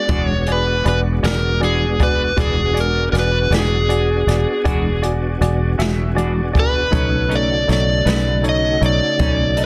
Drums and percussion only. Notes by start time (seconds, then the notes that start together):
0.08 kick, closed hi-hat
0.46 closed hi-hat
0.85 closed hi-hat
1.24 snare, closed hi-hat
1.63 closed hi-hat
2.00 kick, closed hi-hat
2.38 kick, closed hi-hat
2.77 closed hi-hat
3.15 snare, closed hi-hat
3.52 snare, closed hi-hat
3.90 closed hi-hat
4.28 snare, closed hi-hat
4.65 kick, closed hi-hat
5.03 closed hi-hat
5.42 closed hi-hat
5.80 snare, closed hi-hat
6.18 closed hi-hat
6.55 kick, closed hi-hat
6.93 kick, closed hi-hat
7.31 closed hi-hat
7.69 snare, closed hi-hat
8.07 snare, closed hi-hat
8.44 closed hi-hat
8.82 closed hi-hat
9.19 kick, closed hi-hat
9.57 closed hi-hat